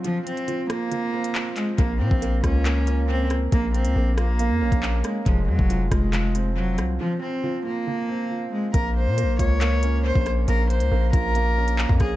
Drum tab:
HH |x-xxx-x-x--x--x-|x---x-x-x-x---x-|x-xx--x-x--x--x-|x---x-x-x-x---x-|
CP |------------x-x-|--------x-------|------------x---|--------x-------|
SD |------r---------|------r-------r-|------r-------r-|------r-------r-|
BD |----------------|o--o--o---------|o----------o----|o--o--o---------|

HH |----------------|x---x-x-x-x---x-|x-xx--x-x--x--x-|
CP |----------------|--------x-------|------------x---|
SD |----------------|--------------r-|--------------r-|
BD |----------------|o-----o------o--|------o------oo-|